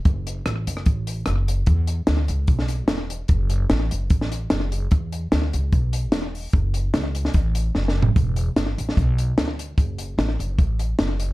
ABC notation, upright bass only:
X:1
M:4/4
L:1/8
Q:1/4=148
K:F#phr
V:1 name="Upright bass" clef=bass
F,,,2 A,,, F,,, A,,,2 F,,,2 | E,,2 D,, C,, B,,,2 E,,,2 | F,,,2 A,,, F,,, A,,,2 F,,,2 | E,,2 D,, C,, B,,,2 E,,,2 |
F,,,2 C,,2 A,,,2 F,,,2 | E,,,2 G,,, A,,, B,,,2 D,,2 | F,,,2 A,,, F,,, A,,,2 F,,,2 |]